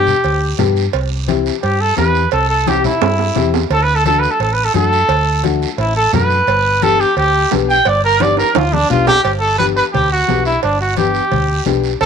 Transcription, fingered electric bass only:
0.00 0.11 G2 loud
0.24 0.52 D2 medium
0.59 0.87 G2 loud
0.94 1.49 C2 loud
1.63 1.91 G2 medium
1.98 2.26 E2 loud
2.33 2.88 C2 loud
3.02 3.29 G2 medium
3.36 3.64 E2 medium
3.70 4.26 D2 loud
4.40 4.68 A1 medium
4.74 5.02 F#2 medium
5.08 5.64 D2 loud
5.78 6.06 A1 medium
6.13 6.41 F#2 medium
6.47 7.03 G1 loud
7.16 7.44 D2 medium
7.52 7.79 B1 medium
7.86 8.42 G1 loud
8.56 8.83 D2 medium
8.90 9.18 B1 medium
9.25 9.80 G1 loud
9.94 10.22 D2 medium
10.29 10.57 B1 medium
10.63 11.19 G1 loud
11.32 11.60 D2 medium
11.67 11.94 B1 medium
12.01 12.06 C2 loud

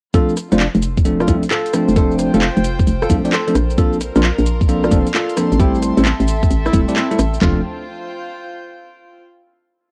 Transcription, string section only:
0.14 4.40 F4 medium
0.64 4.40 C5 medium
1.69 4.22 G5 loud
3.55 5.60 A#4 loud
4.40 5.60 F5 medium
4.48 6.34 C6 medium
5.60 7.42 A4 medium
5.91 7.42 E5 loud
6.45 7.42 A5 medium
7.42 9.19 F4 medium
7.51 9.19 C5 medium
7.58 9.19 G5 medium

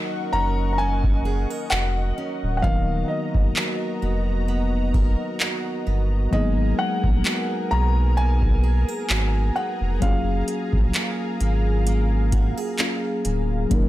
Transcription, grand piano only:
0.00 0.35 F#5 medium
0.33 0.71 A#5 loud
0.73 0.79 A#5 medium
0.78 1.67 G#5 medium
1.70 2.56 F#5 medium
2.57 2.64 F#5 medium
2.62 3.06 F5 medium
3.08 5.82 D#5 medium
6.33 6.76 D#5 medium
6.79 7.74 F#5 medium
7.71 8.19 A#5 loud
8.17 9.52 G#5 loud
9.56 10.03 F#5 medium
10.02 11.83 F5 medium

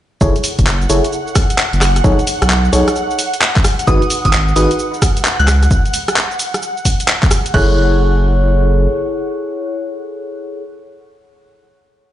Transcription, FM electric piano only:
0.21 0.35 E4 medium
0.21 0.35 G#4 medium
0.21 0.35 A4 medium
0.21 0.35 C#5 medium
0.90 1.04 E4 medium
0.90 1.04 G#4 medium
0.90 1.04 A4 medium
0.90 1.04 C#5 medium
2.04 2.19 D#4 medium
2.04 2.19 G#4 medium
2.04 2.19 A4 medium
2.04 2.19 C#5 medium
2.73 2.87 D#4 medium
2.73 2.87 G#4 medium
2.73 2.87 A4 medium
2.73 2.87 C#5 medium
3.87 4.02 D#4 medium
3.87 4.02 F#4 medium
3.87 4.02 G#4 medium
3.87 4.02 B4 medium
4.56 4.71 D#4 medium
4.56 4.71 F#4 medium
4.56 4.71 G#4 medium
4.56 4.71 B4 medium
7.54 10.64 E4 medium
7.54 10.64 G#4 medium
7.54 10.64 A4 medium
7.54 10.64 C#5 loud

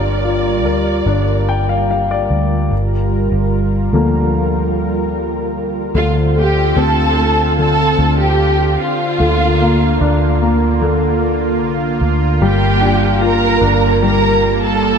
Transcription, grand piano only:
0.00 2.68 G3 medium
0.00 1.05 D4 soft
0.24 1.86 F4 soft
0.65 2.28 A#4 soft
1.07 2.69 D4 medium
1.49 1.68 G5 medium
1.69 1.89 F5 medium
1.91 2.10 F5 medium
2.11 2.68 D5 medium
3.93 5.91 D3 soft
3.93 5.92 F3 soft
3.93 5.92 A#3 medium
5.95 7.57 D3 medium
6.36 7.16 A3 soft
6.77 8.36 C4 medium
7.18 8.76 A3 medium
7.59 9.16 D3 medium
9.20 10.80 D3 medium
9.61 10.40 A#3 medium
10.01 11.57 D4 medium
10.42 11.98 A#3 medium
10.81 12.37 D3 medium
12.42 14.01 G3 medium
12.81 13.59 D4 medium
13.21 14.77 F4 medium
13.61 14.98 D4 medium
14.02 14.98 G3 medium

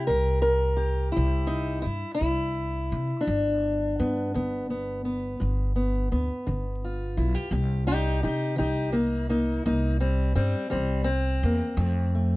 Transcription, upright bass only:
0.09 1.11 C2 medium
1.17 1.83 C2 medium
1.86 2.02 G2 medium
2.21 2.88 C2 medium
2.92 3.09 C3 medium
3.27 3.94 G1 loud
4.00 4.33 G2 medium
4.35 5.37 G1 medium
5.41 6.08 G1 medium
6.12 6.28 D2 medium
6.47 7.14 G1 medium
7.17 7.34 B1 medium
7.51 8.19 C2 loud
8.24 8.58 C3 medium
8.59 9.62 C2 medium
9.66 10.33 C2 medium
10.36 10.53 G2 medium
10.72 11.40 C2 medium
11.43 11.60 E2 loud
11.77 12.37 F2 loud

